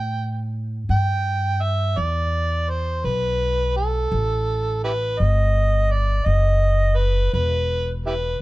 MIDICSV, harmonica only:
0, 0, Header, 1, 2, 480
1, 0, Start_track
1, 0, Tempo, 714286
1, 2050, Time_signature, 12, 3, 24, 8
1, 5655, End_track
2, 0, Start_track
2, 0, Title_t, "Harmonica"
2, 0, Program_c, 0, 22
2, 0, Note_on_c, 0, 79, 91
2, 325, Note_off_c, 0, 79, 0
2, 614, Note_on_c, 0, 79, 114
2, 1090, Note_on_c, 0, 76, 94
2, 1100, Note_off_c, 0, 79, 0
2, 1336, Note_on_c, 0, 74, 100
2, 1346, Note_off_c, 0, 76, 0
2, 1815, Note_on_c, 0, 72, 86
2, 1825, Note_off_c, 0, 74, 0
2, 2051, Note_on_c, 0, 71, 89
2, 2061, Note_off_c, 0, 72, 0
2, 2530, Note_off_c, 0, 71, 0
2, 2534, Note_on_c, 0, 69, 99
2, 3226, Note_off_c, 0, 69, 0
2, 3255, Note_on_c, 0, 64, 59
2, 3255, Note_on_c, 0, 67, 59
2, 3255, Note_on_c, 0, 71, 84
2, 3305, Note_off_c, 0, 67, 0
2, 3308, Note_off_c, 0, 64, 0
2, 3490, Note_on_c, 0, 75, 97
2, 3500, Note_off_c, 0, 71, 0
2, 3972, Note_on_c, 0, 74, 94
2, 3982, Note_off_c, 0, 75, 0
2, 4203, Note_on_c, 0, 75, 97
2, 4213, Note_off_c, 0, 74, 0
2, 4682, Note_on_c, 0, 71, 83
2, 4692, Note_off_c, 0, 75, 0
2, 4926, Note_off_c, 0, 71, 0
2, 4932, Note_on_c, 0, 71, 87
2, 5304, Note_off_c, 0, 71, 0
2, 5418, Note_on_c, 0, 64, 57
2, 5418, Note_on_c, 0, 67, 57
2, 5418, Note_on_c, 0, 71, 81
2, 5466, Note_off_c, 0, 67, 0
2, 5471, Note_off_c, 0, 64, 0
2, 5636, Note_off_c, 0, 71, 0
2, 5655, End_track
0, 0, End_of_file